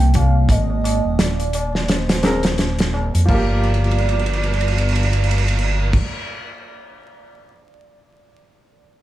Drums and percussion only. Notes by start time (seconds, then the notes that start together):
0.00 closed hi-hat
0.14 kick, closed hi-hat, tabla na
0.35 tabla na
0.49 kick, closed hi-hat, tabla na
0.70 tabla na
0.84 closed hi-hat, tabla na
1.05 tabla na
1.19 snare, closed hi-hat, tabla na
1.40 closed hi-hat, tabla na
1.53 closed hi-hat, tabla na
1.75 snare, tabla na
1.88 snare, closed hi-hat, tabla na
2.09 snare, closed hi-hat, tabla na
2.23 snare, closed hi-hat, tabla na
2.43 snare, closed hi-hat, tabla na
2.58 snare, closed hi-hat, tabla na
2.79 snare, closed hi-hat, tabla na
2.94 tabla na
3.14 closed hi-hat, tabla na
3.28 kick, crash
3.63 crash
3.74 ride
3.84 crash
3.91 ride
3.98 crash
4.09 ride
4.19 crash
4.26 ride
4.33 crash
4.43 ride
4.53 crash
4.61 ride
4.68 crash
4.78 ride
4.89 crash
4.96 ride
5.03 crash
5.13 ride
5.24 crash
5.31 ride
5.38 crash
5.48 ride
5.58 crash
5.93 kick, crash